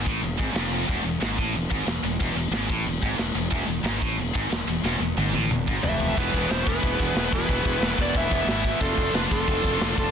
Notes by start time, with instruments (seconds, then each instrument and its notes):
0.06 fingered electric bass A1, distorted electric guitar A2, kick
0.22 fingered electric bass E1, distorted electric guitar E2, crash
0.39 fingered electric bass G#1, distorted electric guitar G#2, kick
0.54 fingered electric bass F1, distorted electric guitar F2, snare, crash
0.88 fingered electric bass E1, distorted electric guitar E2, kick, crash
1.04 fingered electric bass E1, distorted electric guitar E2
1.21 fingered electric bass G#1, distorted electric guitar G#2, snare, crash
1.38 fingered electric bass A1, distorted electric guitar A2, kick
1.54 fingered electric bass E1, distorted electric guitar E2, crash
1.70 fingered electric bass G#1, distorted electric guitar G#2, kick
1.87 fingered electric bass E1, distorted electric guitar E2, snare, crash
2.03 fingered electric bass E1, distorted electric guitar E2
2.20 fingered electric bass E1, distorted electric guitar E2, kick, crash
2.35 fingered electric bass E1, distorted electric guitar E2
2.51 fingered electric bass G#1, distorted electric guitar G#2, snare, crash
2.69 fingered electric bass A1, distorted electric guitar A2, kick
2.85 fingered electric bass E1, distorted electric guitar E2, crash
3.02 fingered electric bass G#1, distorted electric guitar G#2, kick
3.18 fingered electric bass E1, distorted electric guitar E2, snare, crash
3.35 fingered electric bass E1, distorted electric guitar E2
3.51 fingered electric bass E1, distorted electric guitar E2, kick, crash
3.67 fingered electric bass E1, distorted electric guitar E2
3.83 fingered electric bass G#1, distorted electric guitar G#2, snare, crash
4.01 fingered electric bass A1, distorted electric guitar A2, kick
4.17 fingered electric bass E1, distorted electric guitar E2, crash
4.33 fingered electric bass G#1, distorted electric guitar G#2, kick
4.50 fingered electric bass E1, distorted electric guitar E2, snare, crash
4.67 fingered electric bass E1, distorted electric guitar E2
4.84 fingered electric bass E1, distorted electric guitar E2, snare
5.00 fingered electric bass E1, distorted electric guitar E2
5.17 fingered electric bass G#1, distorted electric guitar G#2, high tom
5.33 fingered electric bass A1, distorted electric guitar A2, high tom
5.50 fingered electric bass E1, distorted electric guitar E2, mid tom
5.68 fingered electric bass G#1, distorted electric guitar G#2, kick
5.83 fingered electric bass F1, distorted electric guitar F2, lead electric guitar B4 E5, floor tom
6.00 floor tom
6.16 fingered electric bass E1, distorted electric guitar E2 B2 E3 G#3 B3 E4, lead electric guitar G#4 B4, kick, crash
6.25 distorted electric guitar B3 E4
6.33 fingered electric bass E1, distorted electric guitar B3 E4, kick, ride
6.40 distorted electric guitar B3 E4
6.48 fingered electric bass E1, distorted electric guitar B3 E4, lead electric guitar G#4 C5, snare, ride
6.55 distorted electric guitar B3 E4
6.63 fingered electric bass E1, distorted electric guitar G#3 B3 E4, lead electric guitar G#4, kick, ride
6.68 distorted electric guitar E3 B3, lead electric guitar B4
6.72 distorted electric guitar E4
6.78 distorted electric guitar B3 E4
6.83 fingered electric bass E1, distorted electric guitar B3, kick, ride
6.87 distorted electric guitar E4
6.93 distorted electric guitar B3 E4
7.00 fingered electric bass E1, distorted electric guitar B3 E4, kick, ride
7.08 distorted electric guitar B3 E4
7.15 fingered electric bass E1, distorted electric guitar B3 E4, snare, ride
7.24 distorted electric guitar B3 E4
7.31 fingered electric bass E1, distorted electric guitar B3 E4, lead electric guitar G#4 B4, kick, ride
7.39 distorted electric guitar B3 E4
7.47 fingered electric bass E1, distorted electric guitar E2 B2 E3 G#3 B3 E4, kick, ride
7.56 distorted electric guitar B3 E4
7.63 fingered electric bass E1, distorted electric guitar B3 E4, kick, ride
7.71 distorted electric guitar B3 E4
7.80 fingered electric bass E1, distorted electric guitar B3 E4, snare, ride
7.87 distorted electric guitar B3 E4
7.94 distorted electric guitar B3 E4
7.98 fingered electric bass E1, distorted electric guitar E3 G#3 B3, lead electric guitar B4 D5, kick, ride
8.03 distorted electric guitar E4
8.09 distorted electric guitar B3 E4
8.15 fingered electric bass E1, lead electric guitar B4 E5, kick, ride
8.19 distorted electric guitar B3 E4
8.26 distorted electric guitar B3 E4
8.31 fingered electric bass E1, distorted electric guitar B3 E4, kick, ride
8.41 distorted electric guitar B3 E4
8.47 fingered electric bass G#1, distorted electric guitar B3 E4, lead electric guitar B4 E5, snare, ride
8.57 distorted electric guitar B3 E4
8.64 distorted electric guitar B3 E4, kick, ride
8.72 distorted electric guitar B3 E4
8.80 fingered electric bass F1, distorted electric guitar D3 F3 A3 D4 F4, lead electric guitar F4 A4, kick, ride
8.88 distorted electric guitar D4 F4
8.95 fingered electric bass F1, distorted electric guitar D4 F4, kick, ride
9.03 distorted electric guitar D4 F4
9.10 fingered electric bass F1, distorted electric guitar D4 F4
9.14 lead electric guitar F4 B4, snare, ride
9.19 distorted electric guitar D4 F4
9.27 distorted electric guitar D4 F4
9.31 fingered electric bass F1, distorted electric guitar F3 A3 D4 F4, lead electric guitar F4 A4, kick, ride
9.42 distorted electric guitar D4 F4
9.48 fingered electric bass F1, distorted electric guitar D4 F4, kick, ride
9.57 distorted electric guitar D4 F4
9.64 fingered electric bass F1, distorted electric guitar D4 F4, kick, ride
9.73 distorted electric guitar D4 F4
9.80 fingered electric bass F1, distorted electric guitar D4 F4, snare, ride
9.88 distorted electric guitar D4 F4
9.96 fingered electric bass F1, distorted electric guitar D4 F4, lead electric guitar F4 A4, kick, ride
10.04 distorted electric guitar D4 F4